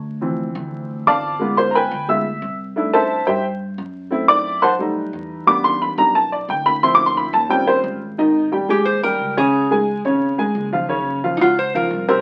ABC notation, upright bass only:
X:1
M:4/4
L:1/8
Q:1/4=177
K:C
V:1 name="Upright bass" clef=bass
D,,3 D,,3 G,,,2- | G,,,3 D,,3 C,,2- | C,,3 G,,3 ^F,,2- | ^F,,3 B,,,3 E,,2- |
E,,3 B,,,3 D,,2- | D,,3 _E,,3 _A,,,2- | [K:Ab] A,,,3 E,,3 D,,2- | D,,3 A,,,3 _G,,,2- |
_G,,,3 D,,3 C,,2 |]